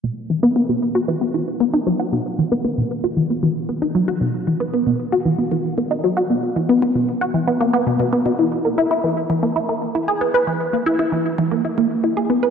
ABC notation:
X:1
M:4/4
L:1/16
Q:1/4=115
K:B
V:1 name="Synth arpeggio sound"
B,, z E, B, B, B,, z F E, B, E, z B, D F, F | B,, z E, B, B, B,, z F E, B, E, z B, D F, F | B,, z E, B, B, B,, z F E, B, E, z B, D F, F | B,, z E, B, B, B,, z F E, B, A, B, B,, B,, B, B,, |
E, z A, E E E, z E, A, E A, z E G B, B | E, z A, E E E, z E, A, E A, z E G B, B |]